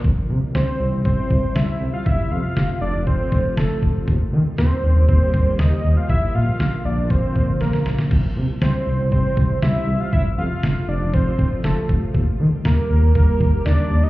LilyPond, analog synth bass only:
\new Staff \with { instrumentName = "Analog synth bass" } { \clef bass \time 4/4 \key c \mixolydian \tempo 4 = 119 c,16 r16 c16 r16 c,16 r16 c,16 c,16 c,16 r16 c,16 r16 c,16 r16 c,16 r16 | f,,16 r16 f,16 r16 f,,16 r16 f,,16 f,,16 f,,16 r16 f,,16 r16 f,,16 r16 f,,16 r16 | ees,16 r16 ees16 r16 ees,16 r16 ees,16 ees,16 ees,16 r16 ees,16 r16 ees,16 r16 ees,16 r16 | bes,,16 r16 bes,16 r16 bes,,16 r16 bes,,16 bes,,16 bes,,16 r16 bes,,16 r16 bes,,16 r16 bes,,16 r16 |
c,16 r16 c16 r16 c,16 r16 c,16 c,16 c,16 r16 c,16 r16 c,16 r16 c,16 r16 | f,,16 r16 f,16 r16 f,,16 r16 f,,16 f,,16 f,,16 r16 f,,16 r16 f,,16 r16 f,,16 r16 | ees,16 r16 ees16 r16 ees,16 r16 ees,16 ees,16 ees,16 r16 ees,16 r16 ees,16 r16 ees,16 r16 | }